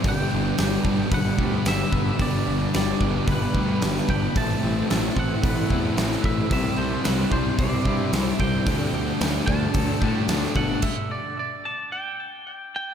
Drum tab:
CC |----------------|----------------|----------------|----------------|
HH |o---o---o---o---|o---o---o---o---|o---o---o---o---|o---o---o---o---|
SD |----o-------o---|----o-------oo--|----o-------oo--|----o-------o---|
BD |o-----o-o-o---o-|o-----o-o-o---o-|o-----o-o-o---o-|o-----o-o-o---o-|

CC |----------------|x---------------|
HH |o---o---o---o---|----------------|
SD |----o-------oo--|----------------|
BD |o-----o-o-o---o-|o---------------|